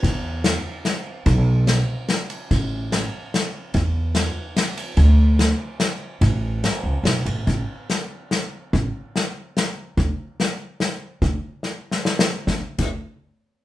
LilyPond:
<<
  \new Staff \with { instrumentName = "Upright bass" } { \clef bass \time 3/4 \key e \dorian \tempo 4 = 145 e,2 r4 | b,,2 r4 | a,,2 r4 | e,2 r4 |
d,2 r4 | a,,4. cis,8 b,,8 a,,8 | a,,8 r2 r8 | a,,8 r2 r8 |
d,8 r2 r8 | d,8 r2 r8 | d,16 r8 d,8 r4. r16 | }
  \new DrumStaff \with { instrumentName = "Drums" } \drummode { \time 3/4 <bd cymr>4 <cymr sn>4 <cymr sn>4 | <bd cymr>4 <cymr sn>4 <cymr sn>8 cymr8 | <bd cymr>4 <cymr sn>4 <cymr sn>4 | <bd cymr>4 <cymr sn>4 <cymr sn>8 cymr8 |
<bd cymr>4 <cymr sn>4 <cymr sn>4 | <bd cymr>4 <cymr sn>4 <cymr sn>8 cymr8 | <hh bd>4 <hh sn>4 <hh sn>4 | <hh bd>4 <hh sn>4 <hh sn>4 |
<hh bd>4 <hh sn>4 <hh sn>4 | <hh bd>4 \tuplet 3/2 { sn8 r8 sn8 sn8 sn8 r8 } | <bd sn>8. <cymc bd>16 r4 r4 | }
>>